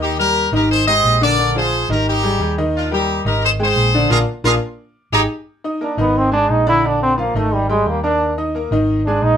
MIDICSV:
0, 0, Header, 1, 5, 480
1, 0, Start_track
1, 0, Key_signature, -3, "major"
1, 0, Tempo, 341297
1, 21, Time_signature, 4, 2, 24, 8
1, 13181, End_track
2, 0, Start_track
2, 0, Title_t, "Horn section"
2, 0, Program_c, 0, 61
2, 37, Note_on_c, 0, 63, 73
2, 37, Note_on_c, 0, 67, 96
2, 253, Note_off_c, 0, 63, 0
2, 253, Note_off_c, 0, 67, 0
2, 277, Note_on_c, 0, 67, 78
2, 282, Note_on_c, 0, 70, 106
2, 717, Note_off_c, 0, 67, 0
2, 719, Note_off_c, 0, 70, 0
2, 770, Note_on_c, 0, 67, 76
2, 775, Note_on_c, 0, 70, 97
2, 980, Note_off_c, 0, 67, 0
2, 983, Note_off_c, 0, 70, 0
2, 1001, Note_on_c, 0, 68, 80
2, 1004, Note_on_c, 0, 72, 104
2, 1213, Note_off_c, 0, 72, 0
2, 1216, Note_off_c, 0, 68, 0
2, 1230, Note_on_c, 0, 72, 98
2, 1232, Note_on_c, 0, 75, 124
2, 1673, Note_off_c, 0, 72, 0
2, 1674, Note_off_c, 0, 75, 0
2, 1737, Note_on_c, 0, 70, 91
2, 1740, Note_on_c, 0, 74, 108
2, 2167, Note_off_c, 0, 70, 0
2, 2169, Note_off_c, 0, 74, 0
2, 2211, Note_on_c, 0, 68, 81
2, 2226, Note_on_c, 0, 72, 97
2, 2644, Note_off_c, 0, 68, 0
2, 2652, Note_off_c, 0, 72, 0
2, 2686, Note_on_c, 0, 67, 78
2, 2700, Note_on_c, 0, 70, 99
2, 2914, Note_off_c, 0, 67, 0
2, 2921, Note_off_c, 0, 70, 0
2, 2932, Note_on_c, 0, 63, 81
2, 2948, Note_on_c, 0, 67, 100
2, 3587, Note_off_c, 0, 63, 0
2, 3595, Note_off_c, 0, 67, 0
2, 3873, Note_on_c, 0, 62, 67
2, 3889, Note_on_c, 0, 65, 91
2, 4090, Note_off_c, 0, 62, 0
2, 4099, Note_off_c, 0, 65, 0
2, 4123, Note_on_c, 0, 63, 75
2, 4133, Note_on_c, 0, 67, 94
2, 4558, Note_off_c, 0, 63, 0
2, 4563, Note_off_c, 0, 67, 0
2, 4602, Note_on_c, 0, 67, 75
2, 4606, Note_on_c, 0, 70, 93
2, 4815, Note_off_c, 0, 67, 0
2, 4817, Note_off_c, 0, 70, 0
2, 4840, Note_on_c, 0, 68, 78
2, 4854, Note_on_c, 0, 72, 106
2, 4943, Note_off_c, 0, 68, 0
2, 4954, Note_off_c, 0, 72, 0
2, 5102, Note_on_c, 0, 68, 80
2, 5114, Note_on_c, 0, 72, 109
2, 5750, Note_off_c, 0, 68, 0
2, 5757, Note_off_c, 0, 72, 0
2, 5782, Note_on_c, 0, 65, 97
2, 5783, Note_on_c, 0, 70, 100
2, 5790, Note_on_c, 0, 68, 88
2, 5896, Note_off_c, 0, 65, 0
2, 5896, Note_off_c, 0, 70, 0
2, 5901, Note_off_c, 0, 68, 0
2, 6260, Note_on_c, 0, 65, 101
2, 6262, Note_on_c, 0, 68, 101
2, 6266, Note_on_c, 0, 70, 107
2, 6374, Note_off_c, 0, 65, 0
2, 6376, Note_off_c, 0, 68, 0
2, 6379, Note_off_c, 0, 70, 0
2, 7216, Note_on_c, 0, 68, 98
2, 7217, Note_on_c, 0, 63, 103
2, 7218, Note_on_c, 0, 67, 95
2, 7331, Note_off_c, 0, 68, 0
2, 7332, Note_off_c, 0, 63, 0
2, 7332, Note_off_c, 0, 67, 0
2, 13181, End_track
3, 0, Start_track
3, 0, Title_t, "Grand piano"
3, 0, Program_c, 1, 0
3, 0, Note_on_c, 1, 51, 95
3, 0, Note_on_c, 1, 63, 91
3, 0, Note_on_c, 1, 75, 96
3, 175, Note_off_c, 1, 63, 0
3, 178, Note_off_c, 1, 51, 0
3, 180, Note_off_c, 1, 75, 0
3, 261, Note_on_c, 1, 55, 77
3, 270, Note_on_c, 1, 67, 80
3, 272, Note_on_c, 1, 70, 78
3, 655, Note_off_c, 1, 55, 0
3, 660, Note_off_c, 1, 67, 0
3, 662, Note_off_c, 1, 70, 0
3, 743, Note_on_c, 1, 63, 86
3, 744, Note_on_c, 1, 51, 88
3, 750, Note_on_c, 1, 75, 92
3, 1136, Note_off_c, 1, 63, 0
3, 1137, Note_off_c, 1, 51, 0
3, 1141, Note_off_c, 1, 75, 0
3, 1230, Note_on_c, 1, 56, 78
3, 1234, Note_on_c, 1, 68, 76
3, 1236, Note_on_c, 1, 67, 79
3, 1620, Note_off_c, 1, 56, 0
3, 1623, Note_off_c, 1, 68, 0
3, 1624, Note_off_c, 1, 67, 0
3, 1706, Note_on_c, 1, 50, 96
3, 1709, Note_on_c, 1, 62, 89
3, 1714, Note_on_c, 1, 74, 95
3, 1901, Note_off_c, 1, 50, 0
3, 1903, Note_off_c, 1, 62, 0
3, 1906, Note_off_c, 1, 74, 0
3, 1953, Note_on_c, 1, 50, 87
3, 1953, Note_on_c, 1, 62, 85
3, 1960, Note_on_c, 1, 74, 85
3, 2145, Note_off_c, 1, 50, 0
3, 2145, Note_off_c, 1, 62, 0
3, 2150, Note_off_c, 1, 74, 0
3, 2182, Note_on_c, 1, 53, 80
3, 2191, Note_on_c, 1, 68, 82
3, 2192, Note_on_c, 1, 65, 83
3, 2576, Note_off_c, 1, 53, 0
3, 2581, Note_off_c, 1, 65, 0
3, 2581, Note_off_c, 1, 68, 0
3, 2668, Note_on_c, 1, 51, 95
3, 2670, Note_on_c, 1, 63, 86
3, 2675, Note_on_c, 1, 75, 86
3, 3059, Note_off_c, 1, 51, 0
3, 3060, Note_off_c, 1, 63, 0
3, 3063, Note_off_c, 1, 75, 0
3, 3138, Note_on_c, 1, 55, 83
3, 3141, Note_on_c, 1, 67, 85
3, 3149, Note_on_c, 1, 68, 76
3, 3336, Note_off_c, 1, 55, 0
3, 3338, Note_off_c, 1, 67, 0
3, 3343, Note_off_c, 1, 68, 0
3, 3390, Note_on_c, 1, 55, 69
3, 3394, Note_on_c, 1, 67, 71
3, 3396, Note_on_c, 1, 68, 76
3, 3583, Note_off_c, 1, 55, 0
3, 3585, Note_off_c, 1, 67, 0
3, 3587, Note_off_c, 1, 68, 0
3, 3627, Note_on_c, 1, 51, 92
3, 3633, Note_on_c, 1, 63, 96
3, 3635, Note_on_c, 1, 75, 93
3, 4018, Note_off_c, 1, 51, 0
3, 4021, Note_off_c, 1, 63, 0
3, 4022, Note_off_c, 1, 75, 0
3, 4097, Note_on_c, 1, 55, 79
3, 4105, Note_on_c, 1, 70, 88
3, 4106, Note_on_c, 1, 67, 81
3, 4491, Note_off_c, 1, 55, 0
3, 4496, Note_off_c, 1, 70, 0
3, 4497, Note_off_c, 1, 67, 0
3, 4583, Note_on_c, 1, 51, 86
3, 4588, Note_on_c, 1, 63, 92
3, 4592, Note_on_c, 1, 75, 89
3, 4975, Note_off_c, 1, 51, 0
3, 4978, Note_off_c, 1, 63, 0
3, 4980, Note_off_c, 1, 75, 0
3, 5056, Note_on_c, 1, 56, 86
3, 5061, Note_on_c, 1, 68, 78
3, 5062, Note_on_c, 1, 79, 81
3, 5450, Note_off_c, 1, 56, 0
3, 5453, Note_off_c, 1, 68, 0
3, 5454, Note_off_c, 1, 79, 0
3, 5547, Note_on_c, 1, 62, 97
3, 5548, Note_on_c, 1, 50, 100
3, 5553, Note_on_c, 1, 74, 95
3, 5740, Note_off_c, 1, 62, 0
3, 5741, Note_off_c, 1, 50, 0
3, 5743, Note_off_c, 1, 74, 0
3, 5769, Note_on_c, 1, 62, 99
3, 5775, Note_on_c, 1, 65, 103
3, 5776, Note_on_c, 1, 58, 94
3, 5926, Note_off_c, 1, 62, 0
3, 5929, Note_off_c, 1, 65, 0
3, 5930, Note_off_c, 1, 58, 0
3, 6247, Note_on_c, 1, 65, 96
3, 6249, Note_on_c, 1, 62, 98
3, 6250, Note_on_c, 1, 58, 103
3, 6404, Note_off_c, 1, 65, 0
3, 6406, Note_off_c, 1, 58, 0
3, 6406, Note_off_c, 1, 62, 0
3, 7207, Note_on_c, 1, 67, 88
3, 7208, Note_on_c, 1, 68, 92
3, 7215, Note_on_c, 1, 63, 97
3, 7364, Note_off_c, 1, 67, 0
3, 7365, Note_off_c, 1, 68, 0
3, 7369, Note_off_c, 1, 63, 0
3, 7937, Note_on_c, 1, 63, 80
3, 7942, Note_on_c, 1, 75, 80
3, 7946, Note_on_c, 1, 87, 76
3, 8133, Note_off_c, 1, 63, 0
3, 8136, Note_off_c, 1, 75, 0
3, 8139, Note_off_c, 1, 87, 0
3, 8170, Note_on_c, 1, 58, 73
3, 8177, Note_on_c, 1, 70, 74
3, 8179, Note_on_c, 1, 82, 74
3, 8369, Note_off_c, 1, 58, 0
3, 8373, Note_off_c, 1, 70, 0
3, 8375, Note_off_c, 1, 82, 0
3, 8408, Note_on_c, 1, 51, 88
3, 8414, Note_on_c, 1, 63, 89
3, 8425, Note_on_c, 1, 75, 85
3, 8805, Note_off_c, 1, 51, 0
3, 8809, Note_off_c, 1, 63, 0
3, 8815, Note_off_c, 1, 75, 0
3, 8881, Note_on_c, 1, 56, 81
3, 8887, Note_on_c, 1, 80, 72
3, 8892, Note_on_c, 1, 68, 77
3, 9281, Note_off_c, 1, 56, 0
3, 9284, Note_off_c, 1, 80, 0
3, 9287, Note_off_c, 1, 68, 0
3, 9377, Note_on_c, 1, 74, 95
3, 9378, Note_on_c, 1, 62, 91
3, 9379, Note_on_c, 1, 50, 89
3, 9574, Note_off_c, 1, 62, 0
3, 9574, Note_off_c, 1, 74, 0
3, 9575, Note_off_c, 1, 50, 0
3, 9622, Note_on_c, 1, 50, 84
3, 9626, Note_on_c, 1, 62, 78
3, 9628, Note_on_c, 1, 74, 79
3, 10014, Note_off_c, 1, 50, 0
3, 10016, Note_off_c, 1, 62, 0
3, 10017, Note_off_c, 1, 74, 0
3, 10096, Note_on_c, 1, 65, 74
3, 10103, Note_on_c, 1, 53, 70
3, 10109, Note_on_c, 1, 77, 73
3, 10293, Note_off_c, 1, 65, 0
3, 10297, Note_off_c, 1, 53, 0
3, 10301, Note_off_c, 1, 77, 0
3, 10341, Note_on_c, 1, 51, 87
3, 10346, Note_on_c, 1, 63, 85
3, 10357, Note_on_c, 1, 75, 87
3, 10734, Note_off_c, 1, 51, 0
3, 10736, Note_off_c, 1, 63, 0
3, 10743, Note_off_c, 1, 75, 0
3, 10820, Note_on_c, 1, 55, 79
3, 10822, Note_on_c, 1, 67, 71
3, 10824, Note_on_c, 1, 79, 77
3, 11213, Note_off_c, 1, 55, 0
3, 11214, Note_off_c, 1, 67, 0
3, 11215, Note_off_c, 1, 79, 0
3, 11300, Note_on_c, 1, 58, 78
3, 11304, Note_on_c, 1, 70, 81
3, 11313, Note_on_c, 1, 82, 76
3, 11693, Note_off_c, 1, 58, 0
3, 11695, Note_off_c, 1, 70, 0
3, 11701, Note_off_c, 1, 82, 0
3, 11784, Note_on_c, 1, 63, 78
3, 11788, Note_on_c, 1, 87, 76
3, 11790, Note_on_c, 1, 75, 82
3, 11978, Note_off_c, 1, 63, 0
3, 11981, Note_off_c, 1, 87, 0
3, 11982, Note_off_c, 1, 75, 0
3, 12023, Note_on_c, 1, 58, 74
3, 12033, Note_on_c, 1, 70, 72
3, 12036, Note_on_c, 1, 82, 74
3, 12218, Note_off_c, 1, 58, 0
3, 12224, Note_off_c, 1, 70, 0
3, 12226, Note_off_c, 1, 82, 0
3, 12262, Note_on_c, 1, 51, 89
3, 12265, Note_on_c, 1, 63, 87
3, 12279, Note_on_c, 1, 75, 89
3, 12655, Note_off_c, 1, 51, 0
3, 12656, Note_off_c, 1, 63, 0
3, 12664, Note_off_c, 1, 75, 0
3, 12757, Note_on_c, 1, 56, 78
3, 12759, Note_on_c, 1, 68, 77
3, 12770, Note_on_c, 1, 80, 78
3, 13144, Note_off_c, 1, 56, 0
3, 13145, Note_off_c, 1, 68, 0
3, 13151, Note_off_c, 1, 80, 0
3, 13181, End_track
4, 0, Start_track
4, 0, Title_t, "Trombone"
4, 0, Program_c, 2, 57
4, 8199, Note_on_c, 2, 62, 73
4, 8411, Note_off_c, 2, 62, 0
4, 8444, Note_on_c, 2, 59, 87
4, 8682, Note_on_c, 2, 60, 90
4, 8703, Note_off_c, 2, 59, 0
4, 8894, Note_off_c, 2, 60, 0
4, 8902, Note_on_c, 2, 62, 99
4, 9154, Note_on_c, 2, 63, 86
4, 9175, Note_off_c, 2, 62, 0
4, 9385, Note_off_c, 2, 63, 0
4, 9403, Note_on_c, 2, 64, 107
4, 9654, Note_on_c, 2, 62, 89
4, 9675, Note_off_c, 2, 64, 0
4, 9871, Note_off_c, 2, 62, 0
4, 9880, Note_on_c, 2, 60, 93
4, 10112, Note_on_c, 2, 58, 81
4, 10133, Note_off_c, 2, 60, 0
4, 10355, Note_on_c, 2, 57, 85
4, 10377, Note_off_c, 2, 58, 0
4, 10598, Note_on_c, 2, 55, 83
4, 10619, Note_off_c, 2, 57, 0
4, 10817, Note_off_c, 2, 55, 0
4, 10825, Note_on_c, 2, 56, 90
4, 11075, Note_on_c, 2, 58, 77
4, 11096, Note_off_c, 2, 56, 0
4, 11291, Note_off_c, 2, 58, 0
4, 11299, Note_on_c, 2, 62, 99
4, 11745, Note_off_c, 2, 62, 0
4, 12741, Note_on_c, 2, 62, 95
4, 12980, Note_on_c, 2, 63, 104
4, 13001, Note_off_c, 2, 62, 0
4, 13181, Note_off_c, 2, 63, 0
4, 13181, End_track
5, 0, Start_track
5, 0, Title_t, "Fingered electric bass"
5, 0, Program_c, 3, 33
5, 0, Note_on_c, 3, 39, 91
5, 658, Note_off_c, 3, 39, 0
5, 729, Note_on_c, 3, 32, 100
5, 1405, Note_off_c, 3, 32, 0
5, 1461, Note_on_c, 3, 34, 99
5, 2581, Note_off_c, 3, 34, 0
5, 2656, Note_on_c, 3, 32, 99
5, 3328, Note_off_c, 3, 32, 0
5, 3368, Note_on_c, 3, 39, 95
5, 4493, Note_off_c, 3, 39, 0
5, 4569, Note_on_c, 3, 32, 95
5, 5242, Note_off_c, 3, 32, 0
5, 5289, Note_on_c, 3, 34, 93
5, 5739, Note_off_c, 3, 34, 0
5, 5763, Note_on_c, 3, 34, 102
5, 5948, Note_off_c, 3, 34, 0
5, 6243, Note_on_c, 3, 34, 105
5, 6428, Note_off_c, 3, 34, 0
5, 7204, Note_on_c, 3, 32, 101
5, 7388, Note_off_c, 3, 32, 0
5, 8399, Note_on_c, 3, 32, 94
5, 9077, Note_off_c, 3, 32, 0
5, 9126, Note_on_c, 3, 34, 90
5, 10252, Note_off_c, 3, 34, 0
5, 10326, Note_on_c, 3, 32, 94
5, 11001, Note_off_c, 3, 32, 0
5, 11054, Note_on_c, 3, 39, 91
5, 12176, Note_off_c, 3, 39, 0
5, 12247, Note_on_c, 3, 32, 97
5, 12923, Note_off_c, 3, 32, 0
5, 12969, Note_on_c, 3, 34, 92
5, 13181, Note_off_c, 3, 34, 0
5, 13181, End_track
0, 0, End_of_file